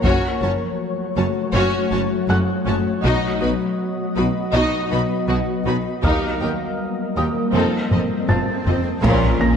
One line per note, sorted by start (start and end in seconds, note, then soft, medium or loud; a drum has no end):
0.00 0.12 F#1 medium
0.00 0.39 C#4 soft
0.00 0.39 F#4 soft
0.00 3.05 C#5 medium
0.00 taiko medium
0.04 0.12 F#2 medium
0.04 6.04 F#3 medium
0.04 3.04 A3 medium
0.04 6.04 F#4 medium
0.04 0.39 F#4 medium
0.04 0.39 C#5 medium
0.42 0.50 F#1 soft
0.42 0.50 F#2 soft
0.42 0.50 C#4 soft
0.42 0.50 F#4 soft
0.42 0.50 C#5 soft
0.42 0.50 A5 soft
1.16 1.24 F#1 soft
1.16 1.25 F#2 soft
1.16 1.25 C#4 soft
1.16 1.25 F#4 soft
1.16 1.26 C#5 soft
1.16 1.25 A5 soft
1.54 1.62 F#1 medium
1.54 1.62 F#2 medium
1.54 1.89 C#4 medium
1.54 1.89 F#4 medium
1.54 1.89 C#5 medium
1.91 1.99 F#1 soft
1.91 2.00 F#2 soft
1.91 1.99 C#4 soft
1.91 1.99 F#4 soft
1.91 2.00 C#5 soft
1.91 2.00 A5 soft
2.29 2.37 F#1 soft
2.29 2.37 F#2 soft
2.29 2.37 C#4 medium
2.29 2.37 F#4 medium
2.29 2.38 A4 soft
2.29 2.37 F#5 soft
2.29 4.50 F#6 soft
2.66 2.74 F#1 soft
2.66 2.75 F#2 soft
2.66 2.74 C#4 medium
2.66 2.74 F#4 soft
2.66 2.75 C#5 soft
2.66 2.75 A5 soft
3.04 3.12 B1 medium
3.04 3.12 B2 medium
3.04 6.04 B3 medium
3.04 3.39 D#4 medium
3.04 3.39 F#4 medium
3.04 9.04 D#5 medium
3.04 3.39 D#5 medium
3.04 taiko medium
3.40 3.50 B1 soft
3.40 3.50 B2 soft
3.40 3.49 D#4 soft
3.40 3.48 F#4 soft
3.40 3.50 B4 soft
3.40 3.50 B5 soft
4.16 4.24 B1 soft
4.16 4.25 B2 soft
4.16 4.24 D#4 soft
4.16 4.24 F#4 soft
4.16 4.24 B4 soft
4.16 4.25 B5 soft
4.53 4.62 B1 medium
4.53 4.62 B2 medium
4.53 4.88 D#4 medium
4.53 4.89 D#4 medium
4.53 4.88 F#4 medium
4.53 4.89 D#5 medium
4.91 4.99 B1 soft
4.91 5.00 B2 soft
4.91 4.99 D#4 soft
4.91 4.99 F#4 soft
4.91 5.00 B4 soft
4.91 5.00 B5 medium
5.28 5.36 B1 soft
5.28 5.37 B2 soft
5.28 5.37 D#4 soft
5.28 5.37 F#4 soft
5.28 5.37 F#5 soft
5.65 5.73 B1 soft
5.65 5.75 B2 soft
5.65 5.74 D#4 medium
5.65 5.74 F#4 soft
5.65 5.76 B4 soft
5.65 5.75 B5 soft
6.03 6.11 D#2 medium
6.03 6.12 D#2 medium
6.03 7.54 G3 medium
6.03 7.54 A#3 medium
6.03 6.39 D#4 medium
6.03 6.38 G4 medium
6.03 7.54 A#4 medium
6.03 6.39 A#4 medium
6.03 8.25 F5 soft
6.03 8.25 F6 soft
6.03 taiko medium
6.03 swell medium
6.41 6.49 D#2 soft
6.41 6.49 D#4 soft
6.41 6.49 G4 soft
6.41 6.50 A#4 soft
6.41 6.50 G5 soft
7.16 7.24 D#2 soft
7.16 7.25 D#2 soft
7.16 7.25 D#4 soft
7.16 7.25 G4 soft
7.16 7.25 A#4 soft
7.16 7.25 G5 soft
7.16 9.00 D#6 soft
7.53 7.62 F1 soft
7.53 7.62 F2 soft
7.53 9.04 F3 medium
7.53 7.89 C4 soft
7.53 9.04 C4 medium
7.53 7.89 D#4 soft
7.53 7.89 F4 soft
7.53 9.04 A4 medium
7.53 7.89 A4 soft
7.91 7.99 F1 soft
7.91 7.99 F2 soft
7.91 8.00 C4 soft
7.91 7.99 F4 soft
7.91 8.00 A4 soft
7.91 8.01 D#5 soft
7.91 taiko low-mid medium
8.29 8.37 F1 soft
8.29 8.37 F2 soft
8.29 8.37 C4 soft
8.29 8.37 F4 soft
8.29 8.38 F4 soft
8.29 8.38 C5 soft
8.29 9.00 A5 soft
8.29 9.00 A6 soft
8.29 taiko low-mid medium
8.66 8.74 F1 soft
8.66 8.75 F2 soft
8.66 8.75 C4 soft
8.66 8.74 F4 soft
8.66 8.76 A4 soft
8.66 8.75 D#5 soft
8.66 taiko low medium
9.03 9.57 A#1 medium
9.03 9.26 A#2 loud
9.03 9.57 A#2 medium
9.03 9.57 F3 medium
9.03 9.57 A#3 medium
9.03 9.57 C#4 medium
9.03 9.39 C#4 medium
9.03 9.57 F4 medium
9.03 9.39 F4 medium
9.03 9.39 A#4 medium
9.03 9.57 A#4 medium
9.03 9.57 C#5 medium
9.03 taiko medium
9.03 impact medium
9.41 9.57 A#3 soft
9.41 9.57 A#3 medium
9.41 9.57 C#4 soft
9.41 9.57 C#5 soft
9.41 9.57 A#6 soft